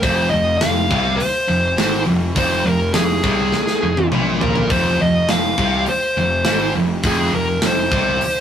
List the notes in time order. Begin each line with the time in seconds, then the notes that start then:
0.02 F1 F2 C5, kick, open hi-hat
0.30 F1 F2 D#5
0.57 F5, snare, open hi-hat
0.62 F1 F2
0.91 C2 C3, kick
1.16 C5, muted distorted electric guitar stroke, open hi-hat
1.21 muted picked electric bass stroke
1.48 F1 F2
1.78 G#1 G#2, snare, open hi-hat
2.06 F1 F2
2.36 F1 F2 C5, kick, open hi-hat
2.65 F1 F2 A#4
2.94 F1 F2 G#4, snare, open hi-hat
3.24 C2 C3, kick
3.52 muted distorted electric guitar stroke, muted picked electric bass stroke, snare
3.67 snare
3.83 F1 F2
3.97 high tom
4.12 A#1 A#2, mid tom
4.41 A#4, floor tom
4.56 floor tom
4.70 F1 F2 C5, kick, open hi-hat
5.00 F1 F2 D#5
5.29 F1 F2 F5, snare, open hi-hat
5.58 C2 C3, kick
5.86 C5, muted distorted electric guitar stroke, muted picked electric bass stroke, open hi-hat
6.17 F1 F2
6.45 G#1 G#2, snare, open hi-hat
6.75 F1 F2
7.03 F1 F2 G#4, kick, open hi-hat
7.32 F1 F2 A#4
7.62 F1 F2, snare, open hi-hat
7.66 C5
7.92 C2 C3, kick
8.21 muted picked electric bass stroke, muted distorted electric guitar stroke, open hi-hat